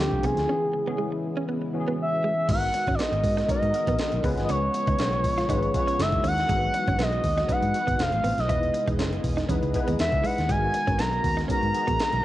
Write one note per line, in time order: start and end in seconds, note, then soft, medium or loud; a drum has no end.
0.00 0.48 D3 medium
0.00 0.39 F3 medium
0.00 0.48 F3 medium
0.00 0.48 A3 medium
0.00 0.39 C4 medium
0.00 0.48 C4 medium
0.00 0.39 D4 medium
0.00 0.48 F4 medium
0.00 0.27 G4 medium
0.00 0.39 A4 medium
0.11 0.20 C2 medium
0.11 kick medium
0.22 0.33 C2 loud
0.22 0.32 B3 medium
0.22 0.99 G#4 loud
0.22 closed hi-hat medium
0.35 0.45 D2 medium
0.35 snare soft
0.35 closed hi-hat soft
0.47 2.46 C#3 medium
0.47 0.74 E3 medium
0.47 2.46 E3 medium
0.47 2.47 G#3 medium
0.47 2.46 B3 medium
0.47 0.74 B3 medium
0.47 0.74 C#4 medium
0.47 0.57 C#4 medium
0.47 2.47 E4 medium
0.47 0.74 G#4 medium
0.73 muted clean electric guitar stroke soft
0.86 1.46 E3 medium
0.86 1.46 B3 medium
0.86 0.94 B3 medium
0.86 1.46 C#4 medium
0.86 1.47 G#4 medium
0.98 1.06 G#3 medium
1.12 muted clean electric guitar stroke soft
1.37 1.44 C#4 medium
1.49 1.57 B3 medium
1.62 muted clean electric guitar stroke soft
1.73 2.25 E3 medium
1.73 2.25 B3 medium
1.73 2.25 C#4 medium
1.73 1.80 F#4 medium
1.80 2.29 G#4 loud
1.88 1.94 B3 medium
2.02 2.47 E5 medium
2.24 2.32 G#3 medium
2.48 2.68 G#1 medium
2.48 4.22 D#3 medium
2.48 3.18 G#3 medium
2.48 4.22 G#3 medium
2.48 2.57 G#3 medium
2.48 2.55 A#3 medium
2.48 5.96 B3 medium
2.48 3.18 D#4 medium
2.48 3.18 F#4 medium
2.48 4.22 F#4 medium
2.48 4.22 A#4 medium
2.48 3.18 A#4 medium
2.48 2.96 F#5 loud
2.48 kick loud
2.48 closed hi-hat medium
2.48 crash medium
2.55 3.21 B3 medium
2.74 muted clean electric guitar stroke soft
2.74 closed hi-hat medium
2.87 2.96 G#1 loud
2.87 2.95 C#4 medium
2.87 kick medium
2.87 closed hi-hat soft
2.95 3.03 D5 medium
2.99 3.07 B3 medium
2.99 3.50 D#5 medium
2.99 snare loud
2.99 closed hi-hat medium
3.12 3.21 G#1 medium
3.12 muted clean electric guitar stroke soft
3.12 closed hi-hat soft
3.24 3.43 G#2 loud
3.24 kick loud
3.24 open hi-hat medium
3.37 3.44 D#4 medium
3.37 snare soft
3.37 closed hi-hat soft
3.48 3.66 G#3 medium
3.48 3.66 B3 medium
3.48 3.57 C#4 medium
3.48 3.67 D#4 medium
3.48 3.67 F#4 medium
3.48 3.67 A#4 medium
3.48 4.21 D#5 loud
3.48 muted fingered electric bass stroke soft
3.48 kick loud
3.48 closed hi-hat loud
3.62 3.71 G#2 loud
3.62 muted clean electric guitar stroke soft
3.62 closed hi-hat soft
3.74 4.22 G#3 medium
3.74 4.22 B3 medium
3.74 4.24 D#4 medium
3.74 4.24 F#4 medium
3.74 4.24 A#4 medium
3.74 closed hi-hat medium
3.87 3.96 A#1 loud
3.87 3.95 B3 medium
3.87 kick loud
3.87 closed hi-hat medium
3.99 snare loud
3.99 closed hi-hat loud
4.12 4.21 B1 medium
4.12 closed hi-hat soft
4.23 4.34 C#2 loud
4.23 5.97 C#3 medium
4.23 5.97 F3 medium
4.23 5.04 G#3 loud
4.23 7.95 G#3 medium
4.23 5.04 B3 loud
4.23 4.32 B3 medium
4.23 5.04 C#4 loud
4.23 5.97 F4 medium
4.23 5.04 F4 loud
4.23 5.04 B4 loud
4.23 kick loud
4.23 open hi-hat medium
4.38 4.46 G#1 medium
4.38 snare soft
4.38 closed hi-hat soft
4.44 4.52 D#5 medium
4.49 4.68 C#2 medium
4.49 4.57 C#4 medium
4.49 5.75 C#5 loud
4.49 closed hi-hat medium
4.74 muted clean electric guitar stroke soft
4.74 closed hi-hat medium
4.87 4.96 C#2 loud
4.87 4.94 D#4 medium
4.87 kick medium
4.87 closed hi-hat soft
4.99 5.24 B1 medium
4.99 5.07 C#4 medium
4.99 snare loud
4.99 closed hi-hat loud
5.13 muted clean electric guitar stroke soft
5.13 closed hi-hat soft
5.24 5.43 A#1 loud
5.24 kick medium
5.24 open hi-hat medium
5.38 5.44 F4 medium
5.38 snare soft
5.38 closed hi-hat soft
5.49 5.68 G#1 loud
5.49 5.66 G#3 medium
5.49 5.67 B3 medium
5.49 5.67 C#4 medium
5.49 5.57 D#4 medium
5.49 5.67 F4 medium
5.49 5.67 B4 loud
5.49 kick loud
5.49 closed hi-hat loud
5.63 muted clean electric guitar stroke soft
5.63 closed hi-hat soft
5.74 5.97 G#3 medium
5.74 5.99 B3 medium
5.74 5.99 C#4 medium
5.74 5.99 F4 medium
5.74 5.99 B4 medium
5.74 6.03 C#5 loud
5.74 kick loud
5.74 closed hi-hat medium
5.87 5.94 C#4 medium
5.87 closed hi-hat medium
5.98 6.18 F#1 loud
5.98 7.97 E3 medium
5.98 7.97 F#3 medium
5.98 6.39 G#3 medium
5.98 6.48 A#3 medium
5.98 6.40 D#4 medium
5.98 6.40 E4 medium
5.98 6.47 F#4 medium
5.98 6.40 F#4 medium
5.98 6.40 A#4 medium
5.98 6.25 E5 loud
5.98 snare loud
5.98 closed hi-hat loud
6.12 kick loud
6.12 closed hi-hat soft
6.24 6.43 D#2 medium
6.24 6.32 C#4 medium
6.24 7.04 F#5 loud
6.24 open hi-hat medium
6.38 snare soft
6.38 closed hi-hat soft
6.48 6.68 G#1 medium
6.48 7.18 G#3 medium
6.48 6.57 G#3 medium
6.48 7.97 B3 medium
6.48 7.18 B3 medium
6.48 7.18 D#4 medium
6.48 7.97 F#4 medium
6.48 7.19 F#4 medium
6.48 6.56 A#4 medium
6.48 kick loud
6.48 closed hi-hat medium
6.56 7.22 B4 loud
6.74 muted clean electric guitar stroke soft
6.74 closed hi-hat medium
6.88 6.96 G#1 loud
6.88 6.95 C#4 medium
6.88 kick medium
6.88 closed hi-hat soft
6.99 7.18 B1 loud
6.99 7.07 B3 loud
6.99 7.53 D#5 loud
6.99 snare loud
6.99 closed hi-hat loud
7.12 muted clean electric guitar stroke soft
7.12 closed hi-hat soft
7.24 7.43 D#2 medium
7.24 kick medium
7.24 open hi-hat medium
7.37 7.44 D#4 medium
7.37 snare soft
7.37 closed hi-hat soft
7.48 7.67 G#3 medium
7.48 7.67 B3 medium
7.48 7.57 C#4 medium
7.48 7.67 D#4 medium
7.48 7.67 F#4 medium
7.48 7.67 B4 medium
7.48 8.03 F#5 loud
7.48 muted fingered electric bass stroke soft
7.48 kick loud
7.48 closed hi-hat medium
7.63 7.71 G#2 loud
7.63 muted clean electric guitar stroke soft
7.63 closed hi-hat soft
7.73 7.99 G#3 medium
7.73 7.99 B3 medium
7.73 7.99 D#4 medium
7.73 7.99 F#4 medium
7.73 7.99 B4 medium
7.73 closed hi-hat medium
7.87 7.96 G#1 medium
7.87 7.94 B3 medium
7.87 kick medium
7.87 closed hi-hat medium
7.98 8.09 F1 loud
7.98 10.47 C3 medium
7.98 8.48 F3 medium
7.98 8.39 A3 medium
7.98 8.49 A3 medium
7.98 8.40 C4 medium
7.98 8.49 C4 medium
7.98 8.48 F4 medium
7.98 8.40 F4 medium
7.98 8.40 C5 medium
7.98 8.39 F5 loud
7.98 snare loud
7.98 closed hi-hat medium
8.12 8.21 A1 medium
8.12 closed hi-hat soft
8.24 8.34 A1 loud
8.24 8.32 B3 medium
8.24 open hi-hat medium
8.38 8.46 B1 medium
8.38 8.85 D#5 medium
8.38 snare soft
8.38 closed hi-hat medium
8.49 8.68 E1 loud
8.49 9.18 G#3 medium
8.49 12.25 G#3 medium
8.49 12.25 B3 medium
8.49 9.18 B3 medium
8.49 9.19 D#4 medium
8.49 8.57 E4 medium
8.49 9.19 E4 medium
8.49 10.47 G#4 medium
8.49 9.19 B4 medium
8.49 10.47 D#5 medium
8.49 kick loud
8.49 closed hi-hat medium
8.63 closed hi-hat soft
8.74 muted clean electric guitar stroke medium
8.74 closed hi-hat medium
8.87 8.99 E1 loud
8.87 8.94 D#4 medium
8.87 kick medium
8.87 closed hi-hat soft
8.99 9.18 F#1 medium
8.99 9.07 C#4 medium
8.99 snare loud
8.99 closed hi-hat medium
9.13 muted clean electric guitar stroke soft
9.13 closed hi-hat soft
9.24 9.43 E1 loud
9.24 kick loud
9.24 open hi-hat medium
9.37 9.44 D#4 medium
9.37 snare soft
9.37 closed hi-hat soft
9.49 9.59 E2 loud
9.49 9.67 G#3 medium
9.49 9.67 B3 medium
9.49 9.57 C#4 medium
9.49 9.67 D#4 medium
9.49 9.67 E4 medium
9.49 9.68 B4 medium
9.49 kick loud
9.49 closed hi-hat loud
9.63 9.72 C#2 loud
9.63 muted clean electric guitar stroke soft
9.63 closed hi-hat soft
9.74 10.26 G#3 medium
9.74 10.26 B3 medium
9.74 10.26 D#4 medium
9.74 10.26 E4 medium
9.74 10.27 B4 loud
9.74 kick loud
9.74 closed hi-hat medium
9.88 9.97 D#2 medium
9.88 9.94 B3 medium
9.88 closed hi-hat medium
9.99 10.10 E2 loud
9.99 10.27 E5 loud
9.99 snare loud
9.99 closed hi-hat medium
10.12 10.21 C#2 medium
10.12 kick loud
10.12 closed hi-hat soft
10.24 10.32 G#3 medium
10.24 10.52 F#5 loud
10.24 open hi-hat medium
10.38 10.51 D#2 medium
10.38 snare soft
10.38 closed hi-hat medium
10.49 10.68 G#1 loud
10.49 12.23 D#3 medium
10.49 11.18 G#3 medium
10.49 10.57 G#3 loud
10.49 11.19 B3 medium
10.49 11.19 D#4 medium
10.49 12.23 F#4 medium
10.49 11.19 F#4 medium
10.49 12.23 A#4 medium
10.49 11.19 A#4 medium
10.49 11.01 G#5 loud
10.49 kick loud
10.49 closed hi-hat medium
10.74 muted clean electric guitar stroke medium
10.74 closed hi-hat medium
10.87 10.96 G#1 loud
10.87 10.94 C#4 medium
10.87 kick medium
10.87 closed hi-hat soft
10.99 11.18 B1 loud
10.99 11.07 B3 medium
10.99 11.24 A#5 loud
10.99 snare loud
10.99 closed hi-hat loud
11.11 muted clean electric guitar stroke soft
11.11 closed hi-hat soft
11.24 11.43 D#2 medium
11.24 11.36 A#5 medium
11.24 kick loud
11.24 open hi-hat medium
11.37 11.44 D#4 medium
11.37 snare soft
11.37 closed hi-hat soft
11.48 11.67 G#3 medium
11.48 11.67 B3 medium
11.48 11.57 C#4 medium
11.48 11.67 D#4 medium
11.48 11.67 F#4 medium
11.48 11.67 A#4 medium
11.48 12.25 A#5 loud
11.48 muted fingered electric bass stroke soft
11.48 kick loud
11.48 closed hi-hat loud
11.62 11.72 G#2 loud
11.62 muted clean electric guitar stroke soft
11.62 closed hi-hat soft
11.73 12.22 G#3 medium
11.73 12.23 B3 medium
11.73 12.24 D#4 medium
11.73 12.24 F#4 medium
11.73 12.24 G#4 medium
11.73 closed hi-hat medium
11.87 11.97 A#1 medium
11.87 11.94 B3 medium
11.87 kick loud
11.87 closed hi-hat medium
11.99 snare loud
11.99 closed hi-hat medium
12.13 12.22 B1 medium
12.13 closed hi-hat soft